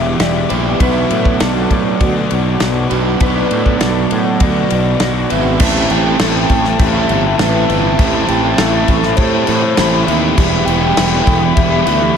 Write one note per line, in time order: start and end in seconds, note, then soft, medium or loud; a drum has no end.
0.00 0.14 E1 medium
0.00 0.78 E2 medium
0.00 0.78 B2 medium
0.00 0.48 E3 medium
0.00 0.79 E3 medium
0.00 0.79 G3 medium
0.00 0.51 B3 medium
0.00 0.48 E4 medium
0.00 0.79 E4 medium
0.00 0.19 G4 medium
0.00 0.49 G4 medium
0.00 0.64 G4 medium
0.00 0.79 G4 medium
0.00 0.49 B4 loud
0.00 0.64 B4 medium
0.00 0.23 E5 loud
0.00 0.64 E5 medium
0.00 5.56 D6 medium
0.20 0.44 E1 medium
0.20 0.80 G4 medium
0.20 0.52 D5 loud
0.20 snare loud
0.20 ride medium
0.49 0.74 A#1 loud
0.49 0.80 E3 medium
0.49 0.81 B3 medium
0.49 0.79 E4 medium
0.49 0.79 G4 medium
0.49 0.82 B4 medium
0.49 0.83 B4 medium
0.49 ride medium
0.79 1.04 B1 medium
0.79 2.00 B2 medium
0.79 2.01 F#3 medium
0.79 2.01 B3 medium
0.79 2.02 D4 loud
0.79 2.02 F#4 medium
0.79 1.40 B4 medium
0.79 5.57 B4 medium
0.79 2.89 B4 medium
0.79 1.43 E5 loud
0.79 5.57 F#5 medium
0.79 3.19 A5 medium
0.79 kick loud
0.79 ride medium
1.10 1.34 A2 medium
1.10 ride medium
1.25 kick medium
1.40 1.65 B1 medium
1.40 3.20 A4 medium
1.40 1.70 D5 loud
1.40 snare loud
1.40 ride medium
1.71 1.94 A2 medium
1.71 2.87 D5 loud
1.71 kick medium
1.71 ride medium
2.00 2.24 D2 medium
2.00 3.19 B2 medium
2.00 3.19 F#3 medium
2.00 3.20 B3 medium
2.00 3.20 D4 medium
2.00 2.59 F#4 medium
2.00 3.20 F#4 medium
2.00 kick loud
2.00 ride medium
2.31 2.55 B1 medium
2.31 ride medium
2.60 2.85 B1 medium
2.60 3.21 F#4 medium
2.60 snare loud
2.60 ride medium
2.90 3.15 B1 medium
2.90 3.19 B2 medium
2.90 3.19 F#3 medium
2.90 3.20 B3 medium
2.90 3.19 D4 medium
2.90 3.19 F#4 medium
2.90 3.19 B4 medium
2.90 ride medium
3.20 3.44 B1 medium
3.20 4.39 B2 medium
3.20 4.39 F#3 medium
3.20 4.39 B3 medium
3.20 4.39 D4 medium
3.20 4.40 F#4 medium
3.20 3.80 B4 medium
3.20 5.29 B4 medium
3.20 4.13 D5 loud
3.20 5.58 B5 medium
3.20 kick loud
3.20 ride medium
3.51 3.74 A2 medium
3.51 ride medium
3.66 kick medium
3.81 4.04 B1 medium
3.81 4.40 A4 medium
3.81 snare loud
3.81 ride medium
4.11 4.35 A2 medium
4.11 4.44 F#5 loud
4.11 ride medium
4.40 4.64 D2 medium
4.40 5.59 B2 medium
4.40 5.59 F#3 medium
4.40 5.59 B3 medium
4.40 5.60 D4 medium
4.40 4.99 F#4 medium
4.40 5.60 F#4 medium
4.40 5.31 D5 loud
4.40 kick loud
4.40 ride medium
4.70 4.95 B1 medium
4.70 ride medium
5.00 5.24 B1 medium
5.00 5.60 F#4 medium
5.00 snare loud
5.00 ride medium
5.30 5.60 G#1 medium
5.30 5.60 B2 medium
5.30 5.60 F#3 medium
5.30 5.59 B3 medium
5.30 5.59 D4 medium
5.30 5.59 F#4 medium
5.30 5.59 B4 medium
5.30 5.92 E5 medium
5.30 ride medium
5.60 5.84 A1 medium
5.60 6.20 A2 medium
5.60 5.90 E3 medium
5.60 5.90 A3 medium
5.60 5.91 C4 medium
5.60 5.92 E4 medium
5.60 6.20 G4 loud
5.60 10.20 A4 medium
5.60 10.20 E5 medium
5.60 10.20 G5 medium
5.60 10.20 A5 medium
5.60 kick loud
5.60 crash loud
5.90 6.15 A1 medium
5.90 6.20 E3 medium
5.90 6.21 A3 medium
5.90 6.22 C4 medium
5.90 6.22 E4 medium
5.90 6.19 G5 loud
5.90 crash medium
6.05 6.21 A3 medium
6.05 6.21 C4 medium
6.05 6.22 E4 medium
6.19 6.45 A1 medium
6.19 7.39 A2 medium
6.19 6.50 E3 medium
6.19 6.37 A3 loud
6.19 6.36 C4 loud
6.19 6.35 E4 loud
6.19 6.80 A4 medium
6.19 6.76 G5 loud
6.19 snare loud
6.19 crash loud
6.35 6.50 A3 medium
6.35 6.51 C4 medium
6.35 6.51 E4 medium
6.49 6.74 A1 medium
6.49 muted overdriven electric guitar stroke medium
6.49 kick medium
6.49 crash medium
6.65 6.96 A3 medium
6.65 6.95 C4 medium
6.65 6.95 E4 medium
6.65 muted overdriven electric guitar stroke soft
6.65 snare soft
6.79 7.04 A1 loud
6.79 7.99 G4 loud
6.79 7.65 E5 loud
6.79 kick loud
6.79 crash medium
6.95 7.09 A3 medium
6.95 7.10 C4 medium
6.95 7.12 E4 medium
7.09 7.34 G1 loud
7.09 7.40 E3 medium
7.09 7.26 A3 medium
7.09 7.25 C4 medium
7.09 7.24 E4 medium
7.09 crash medium
7.24 7.40 A3 medium
7.24 7.40 C4 medium
7.24 7.42 E4 medium
7.24 muted overdriven electric guitar stroke medium
7.39 7.64 A1 medium
7.39 7.85 A2 loud
7.39 7.69 E3 medium
7.39 7.56 A3 loud
7.39 7.55 C4 loud
7.39 7.54 E4 loud
7.39 7.98 B4 medium
7.39 snare loud
7.39 crash medium
7.55 7.69 A3 medium
7.55 7.70 C4 medium
7.55 7.71 E4 medium
7.67 7.94 G1 loud
7.67 8.00 E3 medium
7.67 8.00 A3 medium
7.67 8.29 E5 loud
7.67 crash medium
7.71 8.00 C4 medium
7.71 8.01 E4 medium
7.83 7.98 A3 medium
7.83 7.99 C4 medium
7.83 8.00 E4 medium
7.99 8.23 A1 loud
7.99 8.58 A2 medium
7.99 8.29 E3 loud
7.99 8.29 A3 medium
7.99 8.30 C4 loud
7.99 8.31 E4 loud
7.99 8.58 G4 loud
7.99 kick loud
7.99 crash medium
8.28 8.53 A1 medium
8.28 8.60 E3 medium
8.28 8.60 A3 medium
8.28 8.60 C4 medium
8.28 8.61 E4 medium
8.28 8.59 G5 medium
8.28 crash medium
8.43 8.58 A3 medium
8.43 8.58 C4 medium
8.43 8.60 E4 medium
8.57 8.83 A1 medium
8.57 9.04 A2 medium
8.57 8.89 E3 loud
8.57 8.75 A3 loud
8.57 8.74 C4 loud
8.57 9.18 A4 medium
8.57 9.18 E5 loud
8.57 snare loud
8.57 crash medium
8.62 8.74 E4 loud
8.74 8.89 A3 medium
8.74 8.89 C4 medium
8.74 8.90 E4 medium
8.88 9.13 A1 medium
8.88 muted overdriven electric guitar stroke medium
8.88 kick medium
8.88 crash medium
9.03 9.34 A3 medium
9.03 9.33 C4 medium
9.03 9.33 E4 medium
9.03 muted overdriven electric guitar stroke medium
9.03 snare soft
9.16 9.42 A2 medium
9.16 10.38 G4 loud
9.16 10.07 C5 loud
9.16 kick loud
9.16 crash medium
9.33 9.48 A3 medium
9.33 9.49 C4 medium
9.33 9.50 E4 medium
9.47 9.72 A2 medium
9.47 9.78 E3 medium
9.47 9.64 A3 medium
9.47 9.63 C4 medium
9.47 9.63 E4 medium
9.47 crash medium
9.63 9.78 A3 medium
9.63 9.79 C4 medium
9.63 9.80 E4 medium
9.63 muted overdriven electric guitar stroke medium
9.77 10.02 A1 loud
9.77 10.23 A2 loud
9.77 10.08 E3 loud
9.77 9.94 A3 loud
9.77 9.94 C4 loud
9.77 9.93 E4 loud
9.77 10.38 B5 medium
9.77 snare loud
9.77 crash medium
9.93 10.08 A3 medium
9.93 10.08 C4 medium
9.93 10.10 E4 medium
10.05 10.32 D#2 medium
10.05 10.38 E3 medium
10.05 10.37 A3 medium
10.05 10.67 E5 loud
10.05 crash medium
10.10 10.37 C4 medium
10.10 10.40 E4 medium
10.22 10.37 A3 medium
10.22 10.36 C4 medium
10.22 10.39 E4 medium
10.37 10.62 E1 medium
10.37 10.97 E2 medium
10.37 10.97 B2 medium
10.37 10.68 E3 loud
10.37 10.68 G3 loud
10.37 10.69 B3 loud
10.37 10.70 E4 loud
10.37 12.17 G4 medium
10.37 11.00 G4 loud
10.37 12.17 E5 medium
10.37 12.17 B5 medium
10.37 kick loud
10.37 crash medium
10.65 10.91 E1 medium
10.65 10.98 E3 medium
10.65 10.99 G3 medium
10.65 10.95 G5 loud
10.65 crash medium
10.69 10.99 B3 medium
10.69 11.00 E4 medium
10.82 10.96 G3 medium
10.82 10.98 B3 medium
10.82 10.98 E4 medium
10.96 11.21 E1 medium
10.96 12.15 E2 medium
10.96 11.43 B2 loud
10.96 11.14 E3 loud
10.96 11.13 G3 loud
10.96 11.13 B3 loud
10.96 11.57 A4 medium
10.96 11.55 G5 loud
10.96 snare loud
10.96 crash medium
11.00 11.12 E4 medium
11.12 11.27 E3 medium
11.12 11.27 G3 medium
11.12 11.28 B3 medium
11.12 11.28 E4 medium
11.27 11.51 E1 medium
11.27 muted overdriven electric guitar stroke soft
11.27 kick medium
11.27 crash medium
11.42 11.73 E3 medium
11.42 11.72 G3 medium
11.42 11.71 B3 medium
11.42 11.71 E4 medium
11.42 muted overdriven electric guitar stroke medium
11.54 11.81 E1 loud
11.54 12.17 E5 loud
11.54 kick loud
11.54 crash medium
11.58 12.17 G4 loud
11.71 11.86 E3 medium
11.71 11.87 G3 medium
11.71 11.87 B3 medium
11.71 11.88 E4 medium
11.86 12.11 D2 medium
11.86 12.03 E3 medium
11.86 12.02 G3 medium
11.86 12.01 B3 medium
11.86 12.01 E4 medium
11.86 crash medium
12.01 12.16 E3 medium
12.01 12.17 G3 medium
12.01 12.16 B3 medium
12.01 12.17 E4 medium
12.01 muted overdriven electric guitar stroke medium